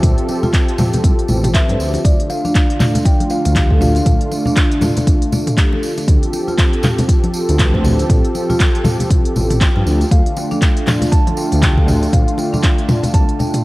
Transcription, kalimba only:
Already playing: E5
1.54 E5
2.04 D5
2.30 F5
3.05 G5
3.31 F5
3.81 F5
9.61 G5
10.11 F5
10.37 G5
11.12 A5
11.37 G5
11.63 G5
12.13 F5
12.38 G5
13.14 A5
13.39 G5

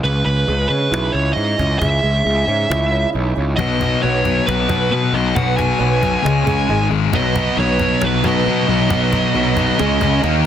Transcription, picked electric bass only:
0.04 C#2
0.26 C#2
0.48 C#2
0.69 C#3
0.92 B1
1.14 C#2
1.36 G#2
1.59 C#2
1.81 C#2
2.03 C#2
2.26 C#2
2.48 G#2
2.70 C#2
3.15 B1
3.37 C#2
3.58 B1
4.04 B1
4.48 B1
4.70 B1
4.90 B2
5.13 B1
5.36 B1
5.80 B1
6.25 C#2
6.47 C#2
6.69 G#1
6.90 G#1
7.14 B1
7.57 B1
8.03 B1
8.24 B1
8.47 B2
8.69 B1
8.90 B1
9.35 B1
9.80 C#2
10.01 C#2
10.23 D#2

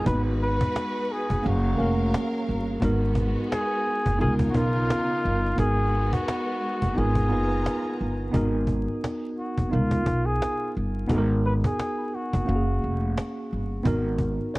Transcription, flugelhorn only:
0.07 B4
0.43 B4
1.12 G#4
1.47 F#4
3.52 G#4
4.21 G#4
4.49 F#4
4.56 F4
5.60 G#4
6.13 F#4
6.98 G#4
9.38 F#4
9.72 F4
10.26 G#4
11.46 B4
11.65 G#4
12.15 F#4

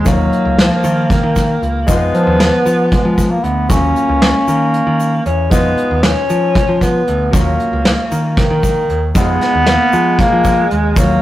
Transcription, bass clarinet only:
0.07 F#3
0.59 F3
1.11 D#3
2.14 F3
2.92 G#3
3.31 A#3
3.44 B3
3.70 C#4
8.38 D#3
9.17 B3
10.21 A#3
10.71 G#3
10.97 F#3

